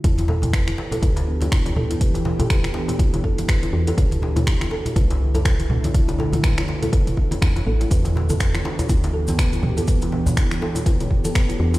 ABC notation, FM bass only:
X:1
M:4/4
L:1/8
Q:"Swing 16ths" 1/4=122
K:Em
V:1 name="FM bass" clef=bass
E,,3 z D,,4- | D,,6 z E,, | D,,3 z C,,4- | C,,6 E,, A,,, |
E,,3 z D,,4- | D,,6 z E,, |]